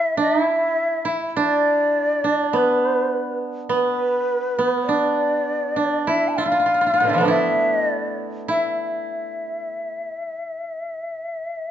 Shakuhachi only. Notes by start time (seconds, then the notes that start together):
Already playing: E5
0.21 E5
1.40 D5
2.56 B4
3.72 B4
4.87 D5
6.06 E5
6.29 A5
6.38 E5
6.50 F5
7.29 E5
7.76 D#5
7.87 D5
8.50 E5